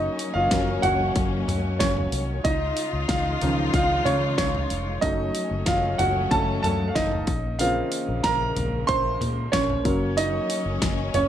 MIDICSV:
0, 0, Header, 1, 5, 480
1, 0, Start_track
1, 0, Tempo, 644538
1, 1822, Time_signature, 4, 2, 24, 8
1, 8403, End_track
2, 0, Start_track
2, 0, Title_t, "Grand piano"
2, 0, Program_c, 0, 0
2, 0, Control_c, 0, 64, 127
2, 0, Note_on_c, 0, 54, 53
2, 0, Note_on_c, 0, 58, 46
2, 0, Note_on_c, 0, 61, 60
2, 0, Note_on_c, 0, 63, 74
2, 0, Note_on_c, 0, 73, 79
2, 0, Note_on_c, 0, 75, 93
2, 239, Note_off_c, 0, 63, 0
2, 251, Note_on_c, 0, 77, 101
2, 267, Note_off_c, 0, 75, 0
2, 267, Note_on_c, 0, 65, 71
2, 371, Note_off_c, 0, 54, 0
2, 374, Note_off_c, 0, 58, 0
2, 377, Note_off_c, 0, 61, 0
2, 382, Note_on_c, 0, 54, 47
2, 385, Note_on_c, 0, 58, 43
2, 388, Note_on_c, 0, 61, 48
2, 598, Note_off_c, 0, 54, 0
2, 599, Note_off_c, 0, 58, 0
2, 599, Note_off_c, 0, 65, 0
2, 601, Note_off_c, 0, 61, 0
2, 613, Note_on_c, 0, 78, 102
2, 627, Note_off_c, 0, 77, 0
2, 630, Note_on_c, 0, 66, 72
2, 1307, Note_off_c, 0, 78, 0
2, 1316, Note_off_c, 0, 66, 0
2, 1335, Note_off_c, 0, 73, 0
2, 1335, Note_on_c, 0, 73, 79
2, 1350, Note_on_c, 0, 61, 61
2, 1789, Note_off_c, 0, 73, 0
2, 1796, Note_off_c, 0, 61, 0
2, 1818, Note_on_c, 0, 75, 96
2, 1830, Control_c, 0, 64, 0
2, 1834, Note_on_c, 0, 63, 71
2, 1962, Control_c, 0, 64, 127
2, 2278, Note_off_c, 0, 63, 0
2, 2296, Note_on_c, 0, 77, 90
2, 2314, Note_off_c, 0, 75, 0
2, 2314, Note_on_c, 0, 65, 65
2, 2546, Note_on_c, 0, 51, 54
2, 2551, Note_on_c, 0, 53, 53
2, 2555, Note_on_c, 0, 61, 60
2, 2758, Note_off_c, 0, 65, 0
2, 2773, Note_off_c, 0, 77, 0
2, 2784, Note_on_c, 0, 77, 98
2, 2800, Note_on_c, 0, 65, 75
2, 3006, Note_off_c, 0, 77, 0
2, 3014, Note_off_c, 0, 65, 0
2, 3018, Note_on_c, 0, 73, 83
2, 3020, Note_off_c, 0, 61, 0
2, 3031, Note_on_c, 0, 61, 63
2, 3248, Note_off_c, 0, 73, 0
2, 3250, Note_off_c, 0, 61, 0
2, 3259, Note_on_c, 0, 73, 87
2, 3270, Note_on_c, 0, 61, 65
2, 3714, Note_off_c, 0, 51, 0
2, 3716, Note_off_c, 0, 53, 0
2, 3716, Note_off_c, 0, 61, 0
2, 3734, Note_on_c, 0, 75, 103
2, 3738, Note_on_c, 0, 54, 62
2, 3743, Note_on_c, 0, 57, 53
2, 3747, Note_on_c, 0, 63, 78
2, 3749, Control_c, 0, 64, 0
2, 3749, Note_on_c, 0, 61, 62
2, 3755, Note_off_c, 0, 73, 0
2, 3890, Control_c, 0, 64, 127
2, 4194, Note_off_c, 0, 63, 0
2, 4215, Note_on_c, 0, 77, 91
2, 4228, Note_on_c, 0, 65, 72
2, 4232, Note_off_c, 0, 75, 0
2, 4269, Note_off_c, 0, 77, 0
2, 4281, Note_off_c, 0, 65, 0
2, 4456, Note_on_c, 0, 78, 94
2, 4469, Note_on_c, 0, 66, 75
2, 4510, Note_off_c, 0, 78, 0
2, 4522, Note_off_c, 0, 66, 0
2, 4690, Note_off_c, 0, 54, 0
2, 4693, Note_off_c, 0, 57, 0
2, 4698, Note_on_c, 0, 81, 105
2, 4699, Note_off_c, 0, 61, 0
2, 4701, Note_on_c, 0, 54, 54
2, 4704, Note_on_c, 0, 57, 50
2, 4710, Note_on_c, 0, 61, 55
2, 4710, Note_on_c, 0, 69, 81
2, 4917, Note_off_c, 0, 54, 0
2, 4919, Note_off_c, 0, 57, 0
2, 4922, Note_off_c, 0, 61, 0
2, 4923, Note_off_c, 0, 81, 0
2, 4929, Note_off_c, 0, 69, 0
2, 4934, Note_on_c, 0, 81, 102
2, 4948, Note_on_c, 0, 69, 76
2, 5120, Note_off_c, 0, 69, 0
2, 5121, Note_on_c, 0, 77, 75
2, 5131, Note_off_c, 0, 81, 0
2, 5177, Note_off_c, 0, 77, 0
2, 5177, Note_on_c, 0, 75, 89
2, 5190, Note_on_c, 0, 63, 77
2, 5430, Control_c, 0, 64, 0
2, 5578, Control_c, 0, 64, 127
2, 5636, Note_off_c, 0, 63, 0
2, 5651, Note_on_c, 0, 77, 99
2, 5655, Note_on_c, 0, 49, 61
2, 5658, Note_on_c, 0, 58, 55
2, 5665, Note_on_c, 0, 60, 65
2, 5665, Note_on_c, 0, 65, 84
2, 5673, Note_off_c, 0, 75, 0
2, 5977, Note_off_c, 0, 49, 0
2, 5979, Note_off_c, 0, 58, 0
2, 5982, Note_off_c, 0, 60, 0
2, 6113, Note_off_c, 0, 65, 0
2, 6133, Note_on_c, 0, 82, 107
2, 6144, Note_on_c, 0, 70, 77
2, 6150, Note_off_c, 0, 77, 0
2, 6592, Note_off_c, 0, 70, 0
2, 6607, Note_on_c, 0, 84, 113
2, 6618, Note_on_c, 0, 72, 89
2, 6631, Note_off_c, 0, 82, 0
2, 7069, Note_off_c, 0, 72, 0
2, 7089, Note_on_c, 0, 73, 94
2, 7101, Note_on_c, 0, 61, 77
2, 7108, Note_off_c, 0, 84, 0
2, 7332, Note_off_c, 0, 61, 0
2, 7333, Note_on_c, 0, 54, 58
2, 7336, Note_on_c, 0, 58, 54
2, 7343, Note_on_c, 0, 61, 60
2, 7350, Control_c, 0, 64, 0
2, 7480, Control_c, 0, 64, 127
2, 7574, Note_on_c, 0, 75, 101
2, 7584, Note_on_c, 0, 63, 77
2, 7589, Note_off_c, 0, 73, 0
2, 8027, Note_off_c, 0, 54, 0
2, 8028, Note_off_c, 0, 58, 0
2, 8032, Note_off_c, 0, 61, 0
2, 8272, Note_off_c, 0, 63, 0
2, 8300, Note_on_c, 0, 73, 90
2, 8310, Note_on_c, 0, 61, 73
2, 8319, Note_off_c, 0, 75, 0
2, 8403, Note_off_c, 0, 61, 0
2, 8403, Note_off_c, 0, 73, 0
2, 8403, End_track
3, 0, Start_track
3, 0, Title_t, "String section"
3, 0, Program_c, 1, 48
3, 0, Note_on_c, 1, 54, 71
3, 0, Note_on_c, 1, 58, 68
3, 0, Note_on_c, 1, 61, 82
3, 1801, Note_off_c, 1, 58, 0
3, 1801, Note_off_c, 1, 61, 0
3, 1802, Note_off_c, 1, 54, 0
3, 1829, Note_on_c, 1, 56, 71
3, 1831, Note_on_c, 1, 63, 72
3, 1831, Note_on_c, 1, 65, 82
3, 1832, Note_on_c, 1, 49, 73
3, 3726, Note_off_c, 1, 56, 0
3, 3727, Note_off_c, 1, 49, 0
3, 3727, Note_off_c, 1, 63, 0
3, 3727, Note_off_c, 1, 65, 0
3, 3742, Note_on_c, 1, 54, 83
3, 3745, Note_on_c, 1, 57, 71
3, 3746, Note_on_c, 1, 61, 79
3, 5405, Note_off_c, 1, 54, 0
3, 5406, Note_off_c, 1, 57, 0
3, 5406, Note_off_c, 1, 61, 0
3, 5414, Note_on_c, 1, 58, 64
3, 5419, Note_on_c, 1, 49, 78
3, 7320, Note_off_c, 1, 49, 0
3, 7337, Note_on_c, 1, 61, 83
3, 7340, Note_on_c, 1, 54, 74
3, 8403, Note_off_c, 1, 54, 0
3, 8403, Note_off_c, 1, 58, 0
3, 8403, Note_off_c, 1, 61, 0
3, 8403, End_track
4, 0, Start_track
4, 0, Title_t, "Fingered electric bass"
4, 0, Program_c, 2, 33
4, 263, Note_on_c, 2, 30, 100
4, 361, Note_off_c, 2, 30, 0
4, 382, Note_on_c, 2, 30, 102
4, 578, Note_off_c, 2, 30, 0
4, 620, Note_on_c, 2, 30, 94
4, 817, Note_off_c, 2, 30, 0
4, 864, Note_on_c, 2, 30, 93
4, 1060, Note_off_c, 2, 30, 0
4, 1101, Note_on_c, 2, 42, 94
4, 1342, Note_on_c, 2, 30, 85
4, 1353, Note_off_c, 2, 42, 0
4, 1539, Note_off_c, 2, 30, 0
4, 1583, Note_on_c, 2, 36, 84
4, 1779, Note_off_c, 2, 36, 0
4, 1823, Note_on_c, 2, 37, 92
4, 2019, Note_off_c, 2, 37, 0
4, 2184, Note_on_c, 2, 37, 86
4, 2281, Note_off_c, 2, 37, 0
4, 2302, Note_on_c, 2, 37, 108
4, 2499, Note_off_c, 2, 37, 0
4, 2548, Note_on_c, 2, 37, 96
4, 2742, Note_off_c, 2, 37, 0
4, 2783, Note_on_c, 2, 37, 105
4, 2979, Note_off_c, 2, 37, 0
4, 3022, Note_on_c, 2, 49, 94
4, 3264, Note_on_c, 2, 37, 79
4, 3275, Note_off_c, 2, 49, 0
4, 3459, Note_off_c, 2, 37, 0
4, 3506, Note_on_c, 2, 29, 85
4, 3701, Note_off_c, 2, 29, 0
4, 3743, Note_on_c, 2, 30, 99
4, 3939, Note_off_c, 2, 30, 0
4, 4103, Note_on_c, 2, 30, 104
4, 4201, Note_off_c, 2, 30, 0
4, 4222, Note_on_c, 2, 30, 112
4, 4418, Note_off_c, 2, 30, 0
4, 4464, Note_on_c, 2, 30, 100
4, 4659, Note_off_c, 2, 30, 0
4, 4702, Note_on_c, 2, 30, 97
4, 4898, Note_off_c, 2, 30, 0
4, 4944, Note_on_c, 2, 42, 98
4, 5139, Note_off_c, 2, 42, 0
4, 5180, Note_on_c, 2, 30, 92
4, 5377, Note_off_c, 2, 30, 0
4, 5420, Note_on_c, 2, 34, 95
4, 5814, Note_off_c, 2, 34, 0
4, 6022, Note_on_c, 2, 34, 99
4, 6120, Note_off_c, 2, 34, 0
4, 6138, Note_on_c, 2, 34, 103
4, 6336, Note_off_c, 2, 34, 0
4, 6379, Note_on_c, 2, 34, 95
4, 6576, Note_off_c, 2, 34, 0
4, 6619, Note_on_c, 2, 34, 105
4, 6816, Note_off_c, 2, 34, 0
4, 6857, Note_on_c, 2, 46, 105
4, 7055, Note_off_c, 2, 46, 0
4, 7098, Note_on_c, 2, 34, 94
4, 7296, Note_off_c, 2, 34, 0
4, 7338, Note_on_c, 2, 30, 97
4, 7732, Note_off_c, 2, 30, 0
4, 7936, Note_on_c, 2, 30, 96
4, 8036, Note_off_c, 2, 30, 0
4, 8057, Note_on_c, 2, 30, 89
4, 8255, Note_off_c, 2, 30, 0
4, 8298, Note_on_c, 2, 30, 94
4, 8403, Note_off_c, 2, 30, 0
4, 8403, End_track
5, 0, Start_track
5, 0, Title_t, "Drums"
5, 142, Note_on_c, 9, 46, 84
5, 217, Note_off_c, 9, 46, 0
5, 381, Note_on_c, 9, 36, 102
5, 381, Note_on_c, 9, 46, 76
5, 382, Note_on_c, 9, 38, 113
5, 455, Note_off_c, 9, 46, 0
5, 456, Note_off_c, 9, 36, 0
5, 457, Note_off_c, 9, 38, 0
5, 620, Note_on_c, 9, 46, 79
5, 622, Note_on_c, 9, 43, 69
5, 694, Note_off_c, 9, 46, 0
5, 696, Note_off_c, 9, 43, 0
5, 861, Note_on_c, 9, 46, 65
5, 863, Note_on_c, 9, 36, 115
5, 935, Note_off_c, 9, 46, 0
5, 938, Note_off_c, 9, 36, 0
5, 1104, Note_on_c, 9, 43, 63
5, 1108, Note_on_c, 9, 46, 70
5, 1179, Note_off_c, 9, 43, 0
5, 1182, Note_off_c, 9, 46, 0
5, 1342, Note_on_c, 9, 36, 99
5, 1343, Note_on_c, 9, 38, 111
5, 1344, Note_on_c, 9, 46, 92
5, 1417, Note_off_c, 9, 36, 0
5, 1418, Note_off_c, 9, 38, 0
5, 1419, Note_off_c, 9, 46, 0
5, 1466, Note_on_c, 9, 43, 65
5, 1541, Note_off_c, 9, 43, 0
5, 1582, Note_on_c, 9, 46, 75
5, 1656, Note_off_c, 9, 46, 0
5, 1822, Note_on_c, 9, 36, 109
5, 1822, Note_on_c, 9, 46, 91
5, 1897, Note_off_c, 9, 36, 0
5, 1897, Note_off_c, 9, 46, 0
5, 2060, Note_on_c, 9, 46, 87
5, 2135, Note_off_c, 9, 46, 0
5, 2300, Note_on_c, 9, 46, 76
5, 2301, Note_on_c, 9, 36, 102
5, 2301, Note_on_c, 9, 38, 106
5, 2374, Note_off_c, 9, 46, 0
5, 2376, Note_off_c, 9, 36, 0
5, 2376, Note_off_c, 9, 38, 0
5, 2543, Note_on_c, 9, 46, 71
5, 2545, Note_on_c, 9, 43, 67
5, 2618, Note_off_c, 9, 46, 0
5, 2620, Note_off_c, 9, 43, 0
5, 2783, Note_on_c, 9, 36, 110
5, 2783, Note_on_c, 9, 46, 70
5, 2857, Note_off_c, 9, 46, 0
5, 2858, Note_off_c, 9, 36, 0
5, 3022, Note_on_c, 9, 43, 62
5, 3026, Note_on_c, 9, 46, 65
5, 3097, Note_off_c, 9, 43, 0
5, 3101, Note_off_c, 9, 46, 0
5, 3262, Note_on_c, 9, 36, 106
5, 3264, Note_on_c, 9, 38, 112
5, 3265, Note_on_c, 9, 46, 85
5, 3336, Note_off_c, 9, 36, 0
5, 3338, Note_off_c, 9, 38, 0
5, 3339, Note_off_c, 9, 46, 0
5, 3386, Note_on_c, 9, 43, 63
5, 3460, Note_off_c, 9, 43, 0
5, 3502, Note_on_c, 9, 46, 76
5, 3577, Note_off_c, 9, 46, 0
5, 3741, Note_on_c, 9, 46, 89
5, 3743, Note_on_c, 9, 36, 106
5, 3815, Note_off_c, 9, 46, 0
5, 3817, Note_off_c, 9, 36, 0
5, 3981, Note_on_c, 9, 46, 85
5, 4056, Note_off_c, 9, 46, 0
5, 4217, Note_on_c, 9, 46, 76
5, 4218, Note_on_c, 9, 38, 113
5, 4220, Note_on_c, 9, 36, 101
5, 4291, Note_off_c, 9, 46, 0
5, 4293, Note_off_c, 9, 38, 0
5, 4294, Note_off_c, 9, 36, 0
5, 4462, Note_on_c, 9, 46, 78
5, 4464, Note_on_c, 9, 43, 66
5, 4537, Note_off_c, 9, 46, 0
5, 4539, Note_off_c, 9, 43, 0
5, 4702, Note_on_c, 9, 36, 117
5, 4702, Note_on_c, 9, 46, 64
5, 4776, Note_off_c, 9, 46, 0
5, 4777, Note_off_c, 9, 36, 0
5, 4943, Note_on_c, 9, 43, 64
5, 4947, Note_on_c, 9, 46, 73
5, 5018, Note_off_c, 9, 43, 0
5, 5021, Note_off_c, 9, 46, 0
5, 5180, Note_on_c, 9, 36, 104
5, 5183, Note_on_c, 9, 38, 110
5, 5183, Note_on_c, 9, 46, 88
5, 5255, Note_off_c, 9, 36, 0
5, 5257, Note_off_c, 9, 38, 0
5, 5258, Note_off_c, 9, 46, 0
5, 5300, Note_on_c, 9, 43, 60
5, 5374, Note_off_c, 9, 43, 0
5, 5415, Note_on_c, 9, 46, 72
5, 5418, Note_on_c, 9, 36, 104
5, 5490, Note_off_c, 9, 46, 0
5, 5493, Note_off_c, 9, 36, 0
5, 5655, Note_on_c, 9, 46, 90
5, 5730, Note_off_c, 9, 46, 0
5, 5896, Note_on_c, 9, 46, 84
5, 5970, Note_off_c, 9, 46, 0
5, 6135, Note_on_c, 9, 46, 78
5, 6136, Note_on_c, 9, 38, 111
5, 6137, Note_on_c, 9, 36, 101
5, 6209, Note_off_c, 9, 46, 0
5, 6211, Note_off_c, 9, 36, 0
5, 6211, Note_off_c, 9, 38, 0
5, 6379, Note_on_c, 9, 46, 76
5, 6381, Note_on_c, 9, 43, 67
5, 6453, Note_off_c, 9, 46, 0
5, 6455, Note_off_c, 9, 43, 0
5, 6618, Note_on_c, 9, 46, 73
5, 6619, Note_on_c, 9, 36, 109
5, 6692, Note_off_c, 9, 46, 0
5, 6694, Note_off_c, 9, 36, 0
5, 6859, Note_on_c, 9, 43, 69
5, 6863, Note_on_c, 9, 46, 70
5, 6934, Note_off_c, 9, 43, 0
5, 6938, Note_off_c, 9, 46, 0
5, 7098, Note_on_c, 9, 36, 101
5, 7099, Note_on_c, 9, 38, 123
5, 7100, Note_on_c, 9, 46, 89
5, 7172, Note_off_c, 9, 36, 0
5, 7173, Note_off_c, 9, 38, 0
5, 7174, Note_off_c, 9, 46, 0
5, 7220, Note_on_c, 9, 43, 62
5, 7294, Note_off_c, 9, 43, 0
5, 7337, Note_on_c, 9, 46, 74
5, 7338, Note_on_c, 9, 36, 96
5, 7411, Note_off_c, 9, 46, 0
5, 7412, Note_off_c, 9, 36, 0
5, 7578, Note_on_c, 9, 46, 97
5, 7653, Note_off_c, 9, 46, 0
5, 7818, Note_on_c, 9, 46, 87
5, 7892, Note_off_c, 9, 46, 0
5, 8056, Note_on_c, 9, 46, 79
5, 8057, Note_on_c, 9, 36, 104
5, 8058, Note_on_c, 9, 38, 114
5, 8131, Note_off_c, 9, 36, 0
5, 8131, Note_off_c, 9, 46, 0
5, 8133, Note_off_c, 9, 38, 0
5, 8297, Note_on_c, 9, 46, 73
5, 8300, Note_on_c, 9, 43, 65
5, 8372, Note_off_c, 9, 46, 0
5, 8374, Note_off_c, 9, 43, 0
5, 8403, End_track
0, 0, End_of_file